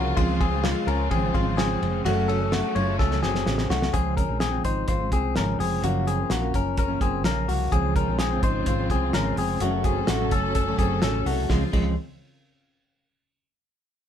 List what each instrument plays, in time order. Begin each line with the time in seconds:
Already playing: fingered electric bass C2, steel-string acoustic guitar C#3 F3 A#3 C#4, string section F3 F4 A#4, clean electric guitar A#3 F#4
0.17 fingered electric bass C#2, string section C#3 C4, steel-string acoustic guitar C#3 F3 G#3 C4, clean electric guitar G#3 F4, kick, ride
0.41 clean electric guitar C4 G#4, kick, ride
0.52 steel-string acoustic guitar F3 G#3 C4
0.64 clean electric guitar G#3 F4, snare, ride
0.87 fingered electric bass C#2, clean electric guitar C#4 A#4, ride
1.11 fingered electric bass G#1, steel-string acoustic guitar C#3 F3 G#3 C4, clean electric guitar C4 G#4, kick, ride
1.33 fingered electric bass G#1, steel-string acoustic guitar C#3 F3 G#3 C4, clean electric guitar G#3 F4, kick, ride
1.56 steel-string acoustic guitar C#3 F3 G#3, clean electric guitar C4 G#4, snare, ride
1.60 steel-string acoustic guitar C4
1.80 fingered electric bass F1, steel-string acoustic guitar C#3 F3 G#3 C4, ride
2.04 fingered electric bass F#1, steel-string acoustic guitar F#2 C#3 F#3 A3 C#4, string section C#3 F#3 A3, clean electric guitar A3 F#4, ride
2.28 clean electric guitar C#4 A4, ride
2.40 steel-string acoustic guitar F#3 A3 C#4
2.52 clean electric guitar A3 F#4, snare, ride
2.75 fingered electric bass F#1, clean electric guitar F4 C#5, ride
2.98 fingered electric bass C#2, steel-string acoustic guitar C#3 F#3 A3 C#4, clean electric guitar C#4 A4, kick, snare
3.11 snare
3.21 fingered electric bass F#1, steel-string acoustic guitar C#3 F#3 A3 C#4, clean electric guitar C4 G#4, snare
3.35 snare
3.44 fingered electric bass A1, steel-string acoustic guitar C#3 F#3 A3 C#4, snare
3.58 snare
3.68 fingered electric bass C2, steel-string acoustic guitar C#3 F#3 A3 C#4, clean electric guitar A3 F#4, snare
3.82 snare
3.92 fingered electric bass C#2, steel-string acoustic guitar C#3 F3 G#3 C4, clean electric guitar C4 G#4, kick, closed hi-hat
4.17 clean electric guitar C#4 A#4, kick, closed hi-hat
4.27 fingered electric bass A#1, steel-string acoustic guitar F3 G#3 C4
4.40 clean electric guitar C4 G#4, snare, closed hi-hat
4.51 steel-string acoustic guitar C#3 F3 G#3 C4
4.64 fingered electric bass G#1, clean electric guitar D#4 C5, kick, closed hi-hat
4.88 fingered electric bass G#1, clean electric guitar F4 C5, kick, closed hi-hat
4.99 steel-string acoustic guitar C#3 F3 G#3 C4
5.11 fingered electric bass C2, clean electric guitar C4 G#4, kick, closed hi-hat
5.34 fingered electric bass G#1, steel-string acoustic guitar C#3 F3 G#3 C4, clean electric guitar C#4 A#4, snare, closed hi-hat
5.59 fingered electric bass F1, clean electric guitar C4 G#4, open hi-hat
5.82 fingered electric bass F#1, steel-string acoustic guitar F#2 C#3 F3 A#3 C#4, clean electric guitar A#3 F#4, closed hi-hat
6.07 clean electric guitar C4 G#4, closed hi-hat
6.18 steel-string acoustic guitar F3 A#3 C#4
6.30 fingered electric bass A#1, clean electric guitar A#3 F#4, snare, closed hi-hat
6.41 steel-string acoustic guitar F#2 C#3 F3 A#3 C#4
6.54 fingered electric bass F#1, clean electric guitar C#4 A#4, kick, closed hi-hat
6.77 clean electric guitar C#4 A#4, kick, closed hi-hat
6.88 steel-string acoustic guitar F#2 C#3 F3 A#3 C#4
7.01 fingered electric bass F#1, clean electric guitar C4 G#4, kick, closed hi-hat
7.24 fingered electric bass A#1, steel-string acoustic guitar C#3 F3 A#3 C#4, clean electric guitar C#4 A#4, snare, closed hi-hat
7.48 fingered electric bass C2, clean electric guitar A#3 F#4, open hi-hat
7.72 fingered electric bass C#2, steel-string acoustic guitar C#3 F3 G#3 C4, string section C#3 C4 F4, clean electric guitar C4 G#4, kick, closed hi-hat
7.96 clean electric guitar C#4 A#4, kick, closed hi-hat
8.08 fingered electric bass A#1, steel-string acoustic guitar G#3 C4
8.12 steel-string acoustic guitar F3
8.19 clean electric guitar C4 G#4, snare, closed hi-hat
8.32 steel-string acoustic guitar C#3 F3 G#3 C4
8.43 fingered electric bass G#1, clean electric guitar D#4 C5, kick, closed hi-hat
8.66 fingered electric bass G#1, clean electric guitar F4 C5, kick, closed hi-hat
8.79 steel-string acoustic guitar C#3 F3 G#3 C4
8.90 fingered electric bass C2, clean electric guitar C4 G#4, kick, closed hi-hat
9.13 fingered electric bass G#1, steel-string acoustic guitar C#3 F3 G#3, clean electric guitar C#4 A#4, snare, closed hi-hat
9.18 steel-string acoustic guitar C4
9.36 fingered electric bass F1, clean electric guitar C4 G#4, open hi-hat
9.60 fingered electric bass F#1, steel-string acoustic guitar F#2 C#3 F#3 A3 C#4, string section F#3 C#4 A4, clean electric guitar A3 F#4, closed hi-hat
9.84 clean electric guitar C4 G#4, kick, closed hi-hat
9.96 steel-string acoustic guitar F#3 A3 C#4
10.07 fingered electric bass A1, clean electric guitar A3 F#4, snare, closed hi-hat
10.19 steel-string acoustic guitar F#2 C#3 F#3 A3 C#4
10.31 fingered electric bass F#1, clean electric guitar C#4 A4, kick, closed hi-hat
10.55 clean electric guitar C#4 A4, kick, closed hi-hat
10.66 steel-string acoustic guitar F#2 C#3 F#3 A3 C#4
10.78 fingered electric bass F#1, clean electric guitar C4 G#4, kick, closed hi-hat
11.02 fingered electric bass A1, steel-string acoustic guitar C#3 F#3 A3 C#4, clean electric guitar C#4 A4, snare, closed hi-hat
11.26 fingered electric bass C2, clean electric guitar A3 F#4, open hi-hat
11.49 fingered electric bass C#2, steel-string acoustic guitar C#3 F3 G#3 C4, string section C#3 C4 F4, clean electric guitar G#3, kick, snare
11.73 fingered electric bass C#2, steel-string acoustic guitar C#3 F3 G#3 C4, clean electric guitar G#3, kick, crash